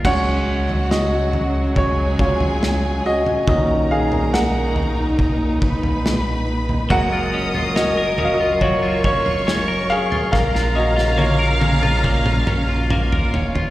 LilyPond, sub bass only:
\new Staff \with { instrumentName = "Sub bass" } { \clef bass \time 4/4 \key cis \mixolydian \tempo 4 = 70 cis,2~ cis,8 cis,4 r8 | b,,2~ b,,8 b,,4. | fis,,2~ fis,,8 fis,,4 r8 | ais,,2~ ais,,8 ais,,4 eis,,8 | }